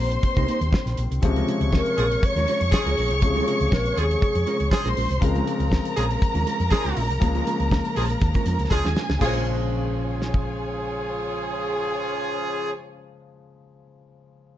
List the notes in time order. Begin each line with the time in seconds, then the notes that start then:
Already playing: D#3 G3 A#3 C4 C5 C6
0.00 A#1
0.12 muted clean electric guitar stroke, closed hi-hat
0.23 muted clean electric guitar stroke, kick, closed hi-hat
0.37 C2 A#3 D#4 G4 A#4, kick, closed hi-hat
0.48 A#3 D#4 G4 A#4, closed hi-hat
0.61 D#2, muted clean electric guitar stroke, closed hi-hat
0.73 muted clean electric guitar stroke, kick, snare
0.86 A#1, muted clean electric guitar stroke, snare, closed hi-hat
0.97 A#1, closed hi-hat
1.11 C2, muted clean electric guitar stroke, closed hi-hat
1.22 C#2 C3 C#3 F3 G#3 C#5 C#6, muted clean electric guitar stroke, kick, closed hi-hat
1.36 G#3 C#4 F4 A#4, closed hi-hat
1.47 G#3 C#4 F4 A#4, closed hi-hat
1.61 C#2, muted clean electric guitar stroke, closed hi-hat
1.73 A#4, muted clean electric guitar stroke, kick, snare
1.86 muted clean electric guitar stroke, closed hi-hat
1.97 A#1 F3 C#4 G#4, closed hi-hat
2.11 muted clean electric guitar stroke, closed hi-hat
2.23 C#5, muted clean electric guitar stroke, kick, closed hi-hat
2.36 D#2 G#3 C#4 F4 A#4, closed hi-hat
2.48 G#3 C#4 F4 A#4, closed hi-hat
2.61 F2, muted clean electric guitar stroke, closed hi-hat
2.72 F3 C#4 G#4, muted clean electric guitar stroke, kick, snare
2.85 C#2 G#3 C#4 F4 A#4, snare, closed hi-hat
2.97 A#1 G#3 C#4 F4 A#4, open hi-hat
3.11 C2, muted clean electric guitar stroke, closed hi-hat
3.21 C#2 C3 C#3 F3 G#3 G#4, muted clean electric guitar stroke, kick, closed hi-hat
3.35 G#3 C#4 F4 A#4, closed hi-hat
3.46 G#3 C#4 F4 A#4, closed hi-hat
3.60 C#2, muted clean electric guitar stroke, closed hi-hat
3.72 A#1 A#4, muted clean electric guitar stroke, kick, snare
3.86 muted clean electric guitar stroke, closed hi-hat
3.97 D#2 F3 C#4 G#4, closed hi-hat
4.10 muted clean electric guitar stroke, closed hi-hat
4.21 muted clean electric guitar stroke, kick, closed hi-hat
4.35 F2, muted clean electric guitar stroke, closed hi-hat
4.46 G#3 C#4 F4 A#4, closed hi-hat
4.60 C#2, muted clean electric guitar stroke, closed hi-hat
4.72 F3 C#4 G#4 C5 C6, kick, snare
4.85 A#1 G#3 C#4 F4 A#4, snare, closed hi-hat
4.97 A#1 G#3 C#4 F4 A#4, open hi-hat
5.10 C2, muted clean electric guitar stroke, closed hi-hat
5.21 C#2 C#3 F3 G#3 C4 A#4 A#5, muted clean electric guitar stroke, kick, closed hi-hat
5.35 G#3 C#4 F4 A#4, closed hi-hat
5.47 G#3 C#4 F4 A#4, closed hi-hat
5.60 C#2, muted clean electric guitar stroke, closed hi-hat
5.71 muted clean electric guitar stroke, kick, snare
5.85 muted clean electric guitar stroke, closed hi-hat
5.97 A#1 F3 C#4 G#4, closed hi-hat
6.10 muted clean electric guitar stroke, closed hi-hat
6.21 muted clean electric guitar stroke, kick, closed hi-hat
6.34 D#2 G#3 C#4 F4 A#4, closed hi-hat
6.46 G#3 C#4 F4 A#4, closed hi-hat
6.60 F2, muted clean electric guitar stroke, closed hi-hat
6.71 F3 C#4 G#4, muted clean electric guitar stroke, kick, snare
6.84 C#2 G#3 C#4 F4 A#4, closed hi-hat
6.96 A#1 G#3 C#4 F4 A#4, open hi-hat
7.09 C2, muted clean electric guitar stroke, closed hi-hat
7.20 C#2 C#3 F3 G#3 A#3, kick, closed hi-hat
7.35 G#3 C#4 F4 A#4, closed hi-hat
7.47 G#3 C#4 F4 A#4, closed hi-hat
7.60 C#2, muted clean electric guitar stroke, closed hi-hat
7.71 muted clean electric guitar stroke, kick, snare
7.85 muted clean electric guitar stroke, closed hi-hat
7.96 A#1 F3 C#4 G#4, open hi-hat
8.10 muted clean electric guitar stroke, closed hi-hat
8.21 D#2, muted clean electric guitar stroke, kick, closed hi-hat
8.34 G#3 C#4 F4 A#4, kick, closed hi-hat
8.46 F2 G#3 C#4 F4 A#4, closed hi-hat
8.59 C#2, muted clean electric guitar stroke, closed hi-hat
8.70 C#2 F3 C#4 G#4 G#5, kick, snare
8.84 D#2 G#3 C#4 F4 A#4, snare
8.96 G#3 C#4 F4 A#4, snare
9.09 C#2, muted clean electric guitar stroke, snare
9.19 A#1 C#3 F3 G#3 C#4 F4 G#4 C#5 G#5, kick, crash
9.24 F4 A#4 C5
10.22 snare
10.34 kick